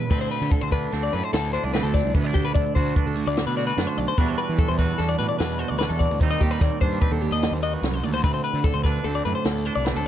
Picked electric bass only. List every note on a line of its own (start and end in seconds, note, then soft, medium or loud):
0.11 0.26 D2 medium
0.42 0.49 D3 medium
0.63 0.86 D2 medium
0.93 1.08 D2 medium
1.14 1.21 F#2 medium
1.33 1.57 D2 medium
1.64 1.79 C2 medium
1.83 1.99 D2 medium
2.04 2.12 C2 loud
2.15 2.30 D2 loud
2.35 2.51 D2 medium
2.56 2.63 D2 medium
2.76 2.91 D2 loud
3.06 3.22 D2 medium
3.27 3.42 D2 medium
3.46 3.70 B2 loud
3.77 3.85 F#2 medium
3.98 4.05 B1 medium
4.18 4.34 E2 loud
4.49 4.57 E3 medium
4.69 4.92 E2 medium
4.99 5.15 E2 medium
5.19 5.27 A2 medium
5.40 5.63 E2 medium
5.71 5.86 D2 medium
5.90 6.06 E2 loud
6.11 6.18 D2 medium
6.21 6.36 D#2 loud
6.41 6.57 D#2 medium
6.61 6.69 D#2 medium
6.82 6.97 G2 medium
7.11 7.27 D#2 medium
7.31 7.47 D#2 medium
7.51 7.75 D#2 loud
7.82 8.01 C2 medium
8.04 8.22 D2 medium
8.24 8.39 D2 medium
8.54 8.62 D3 medium
8.74 8.98 D2 medium
9.04 9.20 D2 medium
9.25 9.33 F#2 medium
9.45 9.69 D2 medium
9.76 9.92 C2 medium
9.96 10.08 D2 loud